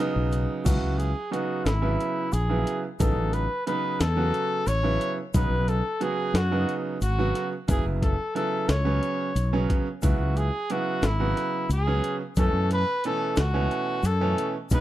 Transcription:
0.00 grand piano C#3 F#3 B3 D#4
0.16 fretless electric bass B1
0.32 closed hi-hat, shaker
0.65 fretless electric bass C#2, grand piano C#3 F#3 B3 E4, trumpet F#4, kick, closed hi-hat, crash, shaker
0.83 fretless electric bass C#2
0.98 trumpet G#4, closed hi-hat, shaker
1.31 grand piano C#3 F#3 B3 D#4, trumpet F#4, closed hi-hat
1.65 fretless electric bass G#1, trumpet E4, snare, closed hi-hat, shaker
1.82 grand piano C#3 F#3 B3 E4
2.01 closed hi-hat
2.33 fretless electric bass A#1, trumpet G#4, closed hi-hat, shaker
2.50 grand piano C#3 F#3 B3 E4
2.67 closed hi-hat
2.99 fretless electric bass A1, grand piano C#3 F#3 B3 D#4, trumpet A4, kick, closed hi-hat, shaker
3.16 fretless electric bass A1
3.33 trumpet B4, closed hi-hat, shaker
3.67 grand piano C#3 F#3 B3 D#4, trumpet B4, closed hi-hat
4.00 fretless electric bass E2, trumpet A4, snare, closed hi-hat, shaker
4.16 grand piano C#3 F#3 B3 F#4
4.34 closed hi-hat
4.67 fretless electric bass A1, trumpet C#5, snare, closed hi-hat, shaker
4.83 grand piano C#3 F#3 B3 E4
5.01 closed hi-hat
5.34 fretless electric bass B1, grand piano C#3 F#3 B3 D#4, trumpet B4, kick, closed hi-hat, shaker
5.50 fretless electric bass B1
5.68 trumpet A4, closed hi-hat, shaker
6.00 grand piano C#3 F#3 B3 F#4, trumpet G#4, closed hi-hat
6.34 fretless electric bass F#2, trumpet F#4, snare, closed hi-hat, shaker
6.51 grand piano C#3 F#3 B3 D#4
6.69 closed hi-hat
7.01 fretless electric bass G#1, trumpet F#4, closed hi-hat, shaker
7.18 grand piano C#3 F#3 B3 F#4
7.35 snare, closed hi-hat
7.68 fretless electric bass F#1, grand piano C#3 F#3 B3 E4, trumpet G#4, kick, closed hi-hat, shaker
7.85 fretless electric bass F#1
8.02 trumpet A4, kick, closed hi-hat
8.35 grand piano C#3 F#3 B3 E4, trumpet A4, closed hi-hat
8.69 fretless electric bass C#2, trumpet C#5, snare, closed hi-hat, shaker
8.85 grand piano C#3 F#3 B3 C#4
9.03 closed hi-hat
9.35 fretless electric bass B1, closed hi-hat, shaker
9.53 grand piano C#3 F#3 B3 C#4
9.70 kick, closed hi-hat
10.02 fretless electric bass C#2, grand piano C#3 F#3 B3 E4, trumpet F#4, kick, closed hi-hat, shaker
10.19 fretless electric bass C#2
10.36 trumpet G#4, closed hi-hat, shaker
10.70 grand piano C#3 F#3 B3 E4, trumpet F#4, closed hi-hat
11.02 fretless electric bass G#1, trumpet E4, snare, closed hi-hat, shaker
11.20 grand piano C#3 F#3 B3 F#4
11.37 snare, closed hi-hat
11.69 fretless electric bass C#2, trumpet G#4, closed hi-hat, shaker
11.87 grand piano C#3 F#3 B3 C#4
12.04 closed hi-hat
12.36 fretless electric bass F#2, grand piano B2 E3 A3 C#4, trumpet A4, kick, closed hi-hat, shaker
12.53 fretless electric bass F#2
12.70 trumpet B4, snare, closed hi-hat, shaker
13.04 grand piano B2 E3 A3 C#4, trumpet A4, closed hi-hat
13.36 fretless electric bass C#2, trumpet F#4, snare, closed hi-hat, shaker
13.54 grand piano B2 E3 A3 C#4
13.71 closed hi-hat
14.03 fretless electric bass F#2, trumpet A4, closed hi-hat, shaker
14.21 grand piano B2 E3 A3 C#4
14.38 closed hi-hat
14.70 fretless electric bass B1, grand piano C#3 F#3 B3 D#4, trumpet B4, kick, closed hi-hat, shaker

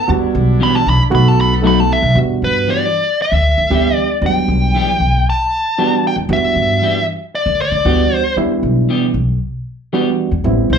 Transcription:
0.08 upright bass E2, reed electric piano G3 B3 D4 F#4, horn section D4 E4
0.35 upright bass B1
0.60 clean electric guitar E3 B3 D4 G4, lead electric guitar B5
0.76 lead electric guitar A5
0.86 upright bass B1, lead electric guitar B5
1.10 upright bass B1, reed electric piano A3 B3 D#4 F#4, horn section B3 D#4 A4
1.15 lead electric guitar B5
1.28 lead electric guitar A5
1.41 lead electric guitar B5
1.62 clean electric guitar F#3 A3 D#4 F#4, reed electric piano A3 B3 D#4 A4
1.67 lead electric guitar B5
1.80 lead electric guitar A5
1.93 lead electric guitar E5
2.02 upright bass B1
2.15 upright bass E2, reed electric piano G3 B3 D4 F#4
2.42 upright bass G2, lead electric guitar B4
2.67 clean electric guitar E3 B3 D4 G4, lead electric guitar D5
3.22 lead electric guitar E5
3.32 upright bass D2
3.58 upright bass D3
3.70 upright bass D2, clean electric guitar E3 B3 D4 G4, reed electric piano G3 B3 D4 G4
3.96 lead electric guitar D5
4.22 upright bass E2, reed electric piano F#3 G3 B3 D4
4.26 lead electric guitar G5
4.48 upright bass B1
4.75 clean electric guitar E3 B3 D4 G4
5.00 upright bass B1
5.30 lead electric guitar A5
5.78 clean electric guitar E3 B3 D4 G4, reed electric piano G3 B3 D4 F#4
6.07 lead electric guitar G5
6.16 upright bass E2
6.29 upright bass E2, reed electric piano G3 B3 D4 F#4
6.33 lead electric guitar E5
6.56 upright bass G2
6.82 clean electric guitar E3 B3 D4 G4
7.35 lead electric guitar D5
7.46 upright bass D2
7.62 lead electric guitar D5
7.72 upright bass D3
7.85 upright bass D2, clean electric guitar E3 B3 D4 G4, reed electric piano G3 B3 D4 F#4
8.16 lead electric guitar C5
8.37 upright bass E2, reed electric piano G3 B3 D4 E4
8.63 upright bass B1
8.89 clean electric guitar E3 B3 D4 G4
9.14 upright bass B1
9.93 clean electric guitar E3 B3 D4 G4, reed electric piano G3 B3 D4 F#4
10.31 upright bass E2
10.44 upright bass A1, reed electric piano G3 B3 C4 E4
10.70 upright bass C2, lead electric guitar C5

